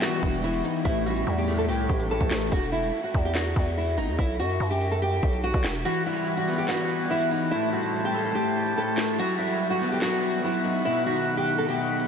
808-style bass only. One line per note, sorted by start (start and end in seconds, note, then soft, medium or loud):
0.23 0.63 E1 loud
0.85 1.25 A1 loud
1.27 1.70 E2 loud
1.69 1.88 C2 loud
1.90 2.19 A1 loud
2.21 2.30 A1 loud
2.31 2.51 A1 loud
2.52 2.92 E1 loud
3.14 3.54 E2 loud
3.56 3.99 E2 loud
3.98 4.10 G1 loud
4.08 4.18 E2 medium
4.19 4.41 B1 loud
4.39 4.59 F#2 loud
4.60 5.20 F#2 loud
5.23 5.53 B1 loud
5.54 5.64 B1 loud
5.64 5.85 E1 loud